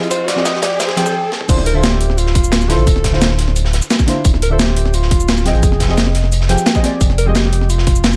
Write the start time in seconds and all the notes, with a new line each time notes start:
Already playing: F3 C4 G4 G#4 D#5, riser
0.02 A1, closed hi-hat
0.11 F1 C5, kick, closed hi-hat, cabasa
0.28 D5, kick, snare, closed hi-hat
0.35 F3 C4 G4 G#4 D#5, snare
0.45 D#5, kick, snare, closed hi-hat, cabasa
0.55 snare
0.62 D5, kick, snare, closed hi-hat
0.80 C5, kick, snare, closed hi-hat, cabasa
0.89 kick, snare
0.96 F2 F3 C4 G4 G#4 G5, kick, snare, closed hi-hat
1.06 kick, cabasa
1.32 snare
1.41 mid tom
1.48 D1 D3 D4 E4 F4 C5, kick, closed hi-hat, crash, cabasa
1.58 snare
1.66 A#4, closed hi-hat
1.73 D3 D4 F4 A4 C5 E5
1.83 G4, snare, closed hi-hat, cabasa
2.01 closed hi-hat
2.10 snare
2.18 F4, closed hi-hat, cabasa
2.26 snare
2.35 kick, closed hi-hat
2.44 D1, cabasa
2.52 snare, closed hi-hat, cabasa
2.61 cabasa
2.68 D3 D4 E4 F4 A4 C5, snare, closed hi-hat
2.78 A1, closed hi-hat
2.87 D1, kick, closed hi-hat, cabasa
2.96 snare
3.04 kick, snare, closed hi-hat
3.11 D3 D4 E4 F4 C5, snare
3.22 snare, closed hi-hat, cabasa
3.30 snare
3.38 snare, closed hi-hat
3.48 snare
3.56 closed hi-hat, cabasa
3.65 snare
3.73 snare, closed hi-hat
3.82 cabasa
3.90 snare, closed hi-hat, cabasa
3.99 kick, cabasa
4.06 D3 D4 E4 F4 C5, snare, closed hi-hat
4.24 D1, kick, closed hi-hat, cabasa
4.34 snare
4.42 A#4, closed hi-hat
4.49 D3 D4 F4 A4 C5 E5
4.59 G4, snare, closed hi-hat, cabasa
4.76 closed hi-hat
4.85 snare
4.94 F4, closed hi-hat, cabasa
5.02 snare
5.11 kick, closed hi-hat
5.20 D1, cabasa
5.29 snare, closed hi-hat, cabasa
5.37 cabasa
5.44 F3 C4 G#4 D#5 G5, snare, closed hi-hat
5.54 A1, closed hi-hat
5.63 F1, kick, closed hi-hat, cabasa
5.72 snare
5.80 kick, snare, closed hi-hat
5.87 F3 C4 G4 G#4 D#5, snare
5.97 snare, closed hi-hat, cabasa
6.06 snare
6.15 snare, closed hi-hat
6.24 snare
6.32 closed hi-hat, cabasa
6.41 snare
6.49 F3 C4 G4 G#4 G5, snare, closed hi-hat
6.58 cabasa
6.66 snare, closed hi-hat, cabasa
6.74 F3 C4 G4 G#4 D#5, kick, cabasa
6.82 F3 C4 G4 G#4 D5, snare, closed hi-hat
7.01 F1, kick, closed hi-hat, cabasa
7.10 snare
7.18 A#4, closed hi-hat
7.25 F3 G#3 C4 G4 G#4 D#5
7.35 G4, snare, closed hi-hat, cabasa
7.53 closed hi-hat
7.61 snare
7.69 F4, closed hi-hat, cabasa
7.78 snare
7.87 kick, closed hi-hat
7.96 F1, cabasa
8.04 snare, closed hi-hat, cabasa
8.13 cabasa